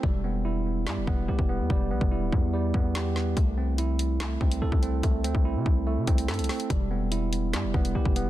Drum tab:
HH |--------------------------------|--------------------------------|x-------x---x---x-----x-----x---|x---x---------------x-x-xxxxo-x-|
CP |----------------x---------------|------------------------x-------|----------------x---------------|------------------------x-------|
SD |----------------o---------------|------------------------o---o---|----------------o---------------|------------------------o---o---|
BD |o-------------------o-----o-----|o-----o-----o-------o-----------|o-------------------o-----o-----|o-----o-----o-------o-----------|

HH |x-------x---x---x-----x-----x---|
CP |----------------x---------------|
SD |----------------o---------------|
BD |o-------------------o-----o-----|